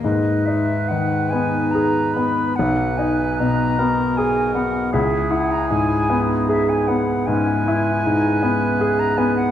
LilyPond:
<<
  \new Staff \with { instrumentName = "Flute" } { \time 12/8 \key gis \minor \tempo 4. = 51 dis''8 e''8 fis''8 gis''8 ais''8 b''8 fis''8 gis''8 ais''4 gis''8 fis''8 | e''8 fis''16 ais''16 gis''4 e''16 gis''16 fis''8 gis''2~ gis''16 ais''16 gis''16 fis''16 | }
  \new Staff \with { instrumentName = "Cor anglais" } { \time 12/8 \key gis \minor b'2. b'4. ais'4. | gis'2~ gis'8 r8 b'2. | }
  \new Staff \with { instrumentName = "Clarinet" } { \time 12/8 \key gis \minor dis'2. dis'4. fis'4. | e'4. dis'4 r8 cis'8 e'8 dis'8 cis'4. | }
  \new Staff \with { instrumentName = "Grand piano" } { \time 12/8 \key gis \minor gis,8 dis'8 dis8 b8 gis'8 b8 b,,8 dis'8 b,8 b8 gis'8 b8 | cis,8 e'8 gis,8 b8 gis'8 b8 gis,8 e'8 gis,8 b8 gis'8 b8 | }
>>